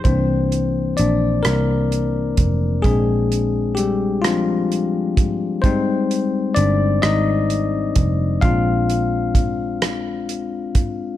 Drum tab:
HH |xxxxxx|xxxxxx|xxxxxx|xxxxxx|
SD |---r--|---r--|---r--|---r--|
BD |o----o|o----o|o----o|o-o--o|